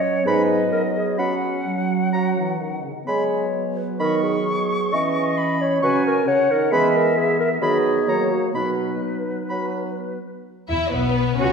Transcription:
0.00 1.49 F#3 medium
0.00 0.23 C#4 soft
0.00 0.28 C#5 soft
0.00 0.25 C#5 medium
0.25 0.64 G#2 medium
0.25 1.49 B3 soft
0.25 0.71 B4 medium
0.25 1.21 D#5 medium
0.25 0.43 B5 soft
0.73 0.83 A#4 medium
0.95 1.20 G#4 medium
1.18 1.58 F#3 soft
1.18 2.60 C#4 medium
1.18 2.84 F#5 soft
1.18 1.35 B5 soft
1.66 2.33 F#3 soft
2.13 2.53 F#3 soft
2.13 2.30 A#5 soft
2.37 2.60 E3 soft
2.60 2.83 D#3 soft
2.84 2.95 C#3 soft
3.07 4.89 F#3 soft
3.07 3.46 G#3 soft
3.07 4.89 B3 soft
3.07 3.79 C#5 medium
3.07 3.24 B5 soft
3.78 4.00 B4 soft
3.99 4.38 D#3 soft
3.99 4.22 A#4 medium
3.99 4.16 B5 soft
3.99 5.39 C#6 medium
4.23 4.95 G#4 medium
4.93 5.31 E3 medium
4.93 5.81 E3 soft
4.93 5.80 C#4 soft
4.93 5.63 D#5 medium
4.93 5.09 C#6 soft
5.37 5.83 B5 soft
5.62 5.83 C#5 medium
5.81 6.25 C#3 medium
5.81 6.20 F#3 medium
5.81 6.25 C#4 medium
5.81 6.05 B4 medium
5.81 6.29 G#5 medium
5.81 5.98 C#6 medium
6.07 6.27 A#4 medium
6.26 6.36 C#3 medium
6.26 6.70 C#4 medium
6.26 6.53 C#5 medium
6.26 6.73 F#5 medium
6.49 6.71 D#3 medium
6.49 6.73 A#4 medium
6.72 7.60 E3 medium
6.72 7.09 G#3 medium
6.72 7.60 B3 medium
6.72 6.97 B4 medium
6.72 7.62 E5 medium
6.72 6.88 B5 medium
6.96 7.19 A#4 medium
7.17 7.39 G#4 medium
7.40 7.50 A#4 medium
7.60 8.07 D#3 soft
7.60 8.00 F#3 medium
7.60 8.07 B3 soft
7.60 8.33 G#4 medium
7.60 8.10 D#5 medium
7.60 7.78 B5 medium
8.07 8.47 F#3 soft
8.07 8.53 F#3 soft
8.07 8.54 A#3 soft
8.07 8.54 C#5 soft
8.07 8.25 A#5 soft
8.31 8.54 F#4 medium
8.54 8.94 B2 soft
8.54 10.19 F#3 soft
8.54 10.18 B3 soft
8.54 9.95 D#4 soft
8.54 10.18 B4 soft
8.54 8.71 B5 soft
9.49 9.90 F#3 soft
9.49 9.66 B5 soft
10.68 10.77 E2 soft
10.68 10.90 E4 medium
10.68 10.91 E4 soft
10.68 10.90 E5 medium
10.91 11.36 B1 soft
10.91 11.37 B3 medium
10.91 11.37 B4 medium
11.38 11.53 C#2 soft
11.38 11.53 C#4 soft
11.38 11.53 F#4 soft
11.38 11.53 C#5 medium

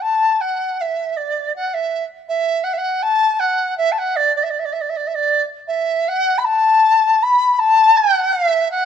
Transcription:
0.01 0.42 A5 medium
0.41 0.82 F#5 medium
0.81 1.18 E5 medium
1.16 1.55 D5 medium
1.55 1.67 F#5 medium
1.67 1.75 F#5 medium
1.74 2.04 E5 medium
2.28 2.65 E5 medium
2.63 2.74 F#5 medium
2.73 2.79 E5 medium
2.78 3.04 F#5 medium
3.02 3.41 A5 loud
3.39 3.77 F#5 medium
3.77 3.93 E5 loud
3.92 4.00 A5 medium
3.98 4.17 F#5 medium
4.16 4.35 D5 loud
4.36 4.44 D5 medium
4.43 4.51 E5 medium
4.50 4.60 D5 medium
4.59 4.66 E5 medium
4.65 4.74 D5 medium
4.72 4.82 E5 medium
4.81 4.91 D5 medium
4.89 4.98 E5 medium
4.96 5.08 D5 medium
5.07 5.16 E5 medium
5.14 5.43 D5 medium
5.67 6.10 E5 medium
6.08 6.39 F#5 loud
6.38 6.46 B5 medium
6.44 7.24 A5 loud
7.23 7.53 B5 loud
7.53 7.60 B5 medium
7.59 7.98 A5 loud
7.97 8.34 F#5 loud
8.33 8.70 E5 loud
8.71 8.85 F#5 loud

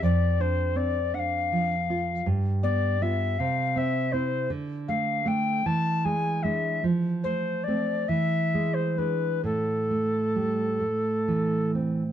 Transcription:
0.02 2.21 F2 soft
0.02 0.42 D5 medium
0.40 0.98 D4 soft
0.40 0.78 C5 soft
0.75 1.13 C4 soft
0.75 1.16 D5 soft
1.14 1.74 D4 soft
1.14 1.20 F#5 medium
1.19 2.26 F5 medium
1.52 2.12 F3 soft
1.90 2.27 F4 soft
2.26 3.36 G2 soft
2.63 3.00 B3 soft
2.63 3.04 D5 medium
3.01 3.36 B3 soft
3.01 3.36 F4 soft
3.01 3.40 E5 medium
3.39 4.47 C3 medium
3.39 3.79 F5 medium
3.76 4.12 C4 soft
3.76 4.14 E5 medium
4.12 4.47 C4 soft
4.12 4.47 E4 soft
4.12 4.50 C5 medium
4.50 5.62 D3 soft
4.88 5.24 A3 soft
4.88 5.29 F5 medium
5.25 5.61 A3 soft
5.25 5.62 D4 soft
5.25 5.68 G5 medium
5.66 6.80 E3 soft
5.66 6.06 A5 medium
6.05 6.43 G#3 soft
6.05 6.44 G#5 medium
6.43 6.80 G#3 soft
6.43 6.81 D4 soft
6.43 6.83 E5 medium
6.84 8.06 F3 soft
7.24 7.67 A3 soft
7.24 7.65 C5 medium
7.64 8.10 D5 soft
7.68 8.07 A3 soft
7.68 8.07 C4 soft
8.08 9.39 E3 soft
8.08 8.75 E5 medium
8.54 8.97 G#3 soft
8.74 8.99 C5 soft
8.98 9.40 G#3 soft
8.98 9.40 D4 soft
8.98 9.44 B4 soft
9.44 12.12 A2 soft
9.44 11.71 A4 medium
9.91 10.64 A3 soft
10.36 10.82 G3 soft
10.80 11.55 A3 soft
11.28 12.02 E3 soft
11.75 12.12 C4 soft

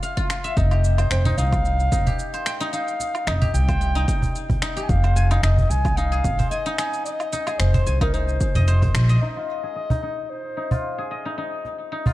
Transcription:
0.00 0.17 F4 medium
0.00 0.77 G#4 medium
0.00 1.04 C#5 medium
0.00 0.50 F5 medium
0.00 0.77 G#5 medium
0.00 shaker soft
0.17 0.29 F4 loud
0.17 kick medium
0.17 shaker soft
0.30 0.50 F4 medium
0.30 finger snap medium
0.30 shaker medium
0.44 0.63 E5 medium
0.44 shaker soft
0.50 0.59 F5 medium
0.57 1.06 F1 medium
0.57 1.25 D#4 medium
0.57 1.11 D#5 loud
0.57 kick loud
0.57 shaker soft
0.71 2.06 G4 medium
0.71 low woodblock medium
0.71 shaker soft
0.84 shaker medium
0.98 2.33 C5 medium
0.98 low woodblock medium
0.98 shaker soft
1.11 1.31 F1 medium
1.11 1.40 C5 loud
1.11 2.46 G5 medium
1.11 finger snap medium
1.11 shaker soft
1.25 1.38 D#4 medium
1.25 cajon bass medium
1.25 shaker soft
1.38 1.87 C2 medium
1.38 1.92 D#4 medium
1.38 2.46 F5 loud
1.38 shaker medium
1.53 kick loud
1.53 low woodblock medium
1.53 shaker soft
1.65 shaker soft
1.80 shaker soft
1.92 2.03 F1 medium
1.92 2.60 D#4 medium
1.92 kick loud
1.92 shaker medium
2.07 3.41 G4 medium
2.07 cajon bass medium
2.07 shaker soft
2.19 shaker soft
2.34 3.68 C5 medium
2.34 shaker soft
2.46 3.80 G5 medium
2.46 finger snap medium
2.46 shaker medium
2.60 2.72 D#4 medium
2.60 shaker soft
2.73 3.27 D#4 medium
2.73 3.29 F5 medium
2.73 shaker soft
2.88 shaker soft
3.00 cajon slap soft
3.00 shaker medium
3.15 low woodblock medium
3.15 shaker soft
3.27 3.48 F1 medium
3.27 3.95 D#4 medium
3.27 3.54 D#5 loud
3.27 finger snap medium
3.27 shaker soft
3.42 4.76 G4 medium
3.42 cajon bass medium
3.42 shaker soft
3.54 4.03 C2 medium
3.54 4.58 G5 loud
3.54 cajon slap soft
3.54 shaker medium
3.68 5.03 C5 medium
3.68 kick medium
3.68 low woodblock medium
3.68 shaker soft
3.81 5.22 G5 medium
3.81 shaker soft
3.95 4.07 D#4 loud
3.95 shaker soft
4.08 4.62 D#4 medium
4.08 kick loud
4.08 shaker medium
4.22 cajon bass medium
4.22 cajon slap medium
4.22 shaker soft
4.35 shaker soft
4.50 cajon bass medium
4.50 kick medium
4.50 shaker soft
4.62 5.30 D#4 medium
4.62 finger snap medium
4.62 shaker medium
4.77 5.22 G4 medium
4.77 shaker soft
4.83 4.91 G#5 medium
4.89 5.38 F1 loud
4.89 5.43 F5 loud
4.89 kick loud
4.89 shaker soft
5.04 6.38 C5 medium
5.04 low woodblock medium
5.04 shaker soft
5.16 6.51 G#5 medium
5.16 shaker medium
5.31 5.43 D#4 medium
5.31 low woodblock medium
5.31 shaker soft
5.43 5.64 F1 medium
5.43 5.97 D#4 medium
5.43 5.72 D#5 loud
5.43 finger snap medium
5.43 shaker soft
5.58 cajon bass medium
5.58 shaker soft
5.70 6.19 C2 medium
5.70 5.99 G#5 loud
5.70 shaker medium
5.85 kick loud
5.85 low woodblock medium
5.85 shaker soft
5.97 6.65 D#4 medium
5.97 6.50 F5 loud
5.97 shaker soft
6.12 7.47 G#4 medium
6.12 shaker soft
6.24 6.35 G#1 medium
6.24 kick loud
6.24 shaker medium
6.39 7.74 C5 medium
6.39 cajon bass medium
6.39 shaker soft
6.51 6.76 D#5 loud
6.51 7.86 G#5 medium
6.51 shaker soft
6.66 6.78 D#4 medium
6.66 shaker soft
6.78 7.32 D#4 medium
6.78 7.04 G#5 loud
6.78 finger snap medium
6.78 shaker medium
6.93 shaker soft
7.05 7.61 D#5 loud
7.05 shaker soft
7.20 low woodblock medium
7.20 shaker soft
7.32 8.01 D#4 medium
7.32 cajon slap soft
7.32 shaker medium
7.47 9.63 G#4 medium
7.47 low woodblock medium
7.47 shaker soft
7.59 7.80 F1 medium
7.59 8.01 C5 medium
7.59 finger snap medium
7.59 shaker soft
7.74 8.67 C5 medium
7.74 cajon bass medium
7.74 shaker soft
7.86 8.35 C2 medium
7.86 9.37 G#5 medium
7.86 cajon slap soft
7.86 shaker medium
8.01 8.13 D#4 loud
8.01 8.16 A#4 medium
8.01 kick loud
8.01 low woodblock medium
8.01 shaker soft
8.14 9.21 D#4 medium
8.14 8.95 C5 medium
8.14 shaker soft
8.29 shaker soft
8.41 kick medium
8.41 shaker medium
8.55 8.89 F1 loud
8.55 9.09 D#5 loud
8.55 cajon bass medium
8.55 cajon slap medium
8.55 shaker soft
8.68 8.82 C5 loud
8.68 shaker soft
8.82 10.80 C5 medium
8.82 kick medium
8.82 cajon bass medium
8.82 cajon slap medium
8.82 shaker soft
8.94 9.15 A#1 loud
8.94 finger snap medium
8.94 shaker medium
9.09 9.75 D#5 medium
9.09 shaker soft
9.21 9.90 D#4 medium
9.21 10.23 D#5 loud
9.36 10.71 F4 medium
9.63 10.98 G#4 medium
9.76 11.11 D#5 medium
9.90 10.02 D#4 medium
9.90 cajon bass medium
10.03 10.56 D#4 medium
10.23 10.31 D#5 medium
10.30 11.11 C5 medium
10.57 11.25 D#4 medium
10.71 12.06 F4 medium
10.71 cajon bass medium
10.98 12.13 G#4 medium
11.11 12.13 D#5 medium
11.25 11.37 D#4 medium
11.38 11.91 D#4 medium
11.65 cajon slap soft
11.92 12.13 D#4 medium
12.06 12.13 F4 medium
12.06 cajon bass medium

